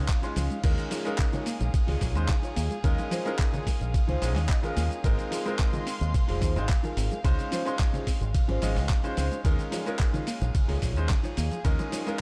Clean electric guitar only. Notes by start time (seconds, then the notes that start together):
0.22 C#4 F4 G#4 C#5
0.91 D#4 F4 G#4 C#5
1.33 D#4 F4 G#4 C#5
1.60 muted clean electric guitar stroke
1.87 D#4 F4 G#4 C#5
2.42 D#4 F4 G#4 C#5
3.11 D#4 F4 G#4 C5
3.52 D#4 F4 G#4 C#5
3.80 muted clean electric guitar stroke
4.07 D#4 F4 G#4 C5
4.49 D#5
4.63 D#4 F4 G#4 C#5
4.77 G5
5.31 D#4 F4 G#4 C5
5.73 D#4 F4 G#4 D#5
6.00 muted clean electric guitar stroke
6.28 D#4 F4 G#4 C5
6.83 D#4 F4 G#4 A#4
7.51 C#4 F4 G#4 C5
7.93 C#4 F4 G#4 C5
8.21 muted clean electric guitar stroke
8.48 C#4 F4 G#4 C5
9.03 C#4 F4 G#4 C5
9.71 D#4 F4 G#4 C#5
10.13 D#4 F4 G#4 C#5
10.41 muted clean electric guitar stroke
10.68 D#4 F4 G#4 C#5
11.23 D#4 F4 G#4 C#5
11.91 D#4 F4 G#4 C#5